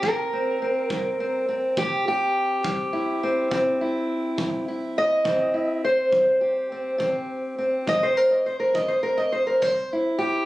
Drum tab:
BD |o--o--o--o--|o--o--o--o--|o--o--o--o--|